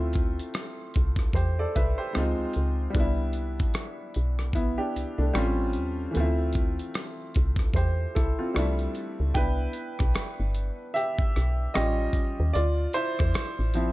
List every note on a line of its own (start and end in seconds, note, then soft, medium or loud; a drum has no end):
0.00 0.40 D2 loud
0.00 2.09 A3 medium
0.00 2.10 C4 medium
0.00 2.12 E4 medium
0.00 2.13 F4 medium
0.13 kick medium
0.13 closed hi-hat medium
0.39 closed hi-hat soft
0.54 cross-stick loud
0.54 closed hi-hat medium
0.94 1.28 C2 medium
0.94 kick medium
0.94 closed hi-hat medium
1.16 kick medium
1.16 cross-stick soft
1.33 1.66 E2 medium
1.33 1.57 G4 soft
1.33 1.57 C5 medium
1.33 kick medium
1.33 closed hi-hat medium
1.59 1.75 A4 medium
1.59 1.74 D5 medium
1.75 1.95 C2 medium
1.75 1.97 B4 medium
1.75 1.97 E5 medium
1.75 kick medium
1.75 closed hi-hat medium
1.98 2.36 G4 soft
1.98 2.36 C5 medium
2.13 2.34 C#2 medium
2.13 2.94 G#3 medium
2.13 2.95 C4 medium
2.13 2.95 D#4 medium
2.13 cross-stick loud
2.13 closed hi-hat medium
2.18 2.96 F4 medium
2.39 2.46 C#2 soft
2.53 2.88 C#2 medium
2.53 closed hi-hat soft
2.90 5.28 G3 medium
2.90 4.51 B3 medium
2.95 3.59 C2 loud
2.95 4.52 D4 medium
2.95 kick loud
2.95 closed hi-hat medium
3.00 4.53 E4 medium
3.33 closed hi-hat medium
3.60 kick medium
3.60 closed hi-hat soft
3.74 cross-stick loud
3.74 closed hi-hat medium
4.14 4.80 B1 medium
4.14 closed hi-hat medium
4.39 cross-stick soft
4.53 4.77 B3 medium
4.53 4.77 E4 medium
4.53 kick medium
4.53 closed hi-hat medium
4.78 5.16 D4 medium
4.78 5.16 G4 medium
4.96 5.05 C2 soft
4.96 closed hi-hat medium
5.18 5.32 C2 medium
5.18 5.56 A3 soft
5.18 5.56 D4 medium
5.33 5.78 A1 medium
5.33 6.14 G3 medium
5.33 6.15 C4 medium
5.33 6.15 C#4 medium
5.33 cross-stick loud
5.33 closed hi-hat medium
5.38 6.15 F4 medium
5.73 6.08 D#2 medium
5.73 closed hi-hat soft
6.11 6.20 E3 soft
6.11 8.50 A3 medium
6.11 closed hi-hat medium
6.16 6.80 D2 loud
6.16 7.73 C4 medium
6.16 7.74 E4 medium
6.16 8.37 F4 medium
6.53 kick medium
6.53 closed hi-hat medium
6.79 closed hi-hat soft
6.94 cross-stick loud
6.94 closed hi-hat medium
7.35 7.68 C2 medium
7.35 kick medium
7.35 closed hi-hat medium
7.56 kick medium
7.56 cross-stick soft
7.74 8.07 E2 medium
7.74 8.14 G4 soft
7.74 8.13 C5 medium
7.74 kick medium
7.74 closed hi-hat medium
8.15 8.35 C2 medium
8.15 8.37 E4 medium
8.15 8.37 A4 medium
8.15 kick medium
8.15 cross-stick soft
8.15 closed hi-hat medium
8.39 8.77 C4 soft
8.39 8.76 F4 medium
8.54 8.88 C2 loud
8.54 9.34 G3 medium
8.54 9.35 A3 medium
8.54 9.35 D4 medium
8.54 cross-stick loud
8.54 closed hi-hat medium
8.59 9.35 E4 medium
8.79 closed hi-hat soft
8.95 closed hi-hat soft
9.20 9.33 C#2 medium
9.34 9.68 C2 loud
9.34 11.71 B3 soft
9.34 11.71 D4 soft
9.34 11.72 E4 medium
9.34 10.52 B4 medium
9.34 10.50 G5 loud
9.34 kick loud
9.34 closed hi-hat medium
9.73 closed hi-hat medium
9.99 10.13 B1 medium
9.99 kick medium
9.99 cross-stick soft
10.15 10.26 G1 soft
10.15 cross-stick loud
10.15 closed hi-hat medium
10.40 10.71 G1 medium
10.55 closed hi-hat medium
10.94 11.71 G4 medium
10.94 11.77 E5 loud
10.94 closed hi-hat medium
11.19 kick medium
11.36 11.68 B1 medium
11.36 cross-stick soft
11.36 closed hi-hat medium
11.74 12.08 A1 loud
11.74 12.51 G3 medium
11.74 12.51 C#4 soft
11.74 12.51 F4 medium
11.74 12.51 G4 medium
11.74 12.50 D#5 medium
11.74 cross-stick loud
11.74 closed hi-hat medium
12.13 kick medium
12.13 closed hi-hat medium
12.40 12.52 D#2 medium
12.53 12.87 D2 loud
12.53 12.92 F4 medium
12.53 12.95 D5 medium
12.53 closed hi-hat medium
12.93 13.74 E4 medium
12.93 13.92 C5 medium
12.93 closed hi-hat medium
13.19 13.33 E2 medium
13.19 kick medium
13.19 cross-stick soft
13.34 13.45 A1 soft
13.34 cross-stick loud
13.34 closed hi-hat medium
13.59 13.91 A1 medium
13.74 13.92 F3 soft
13.74 13.92 C4 soft
13.74 13.92 E4 medium
13.74 closed hi-hat medium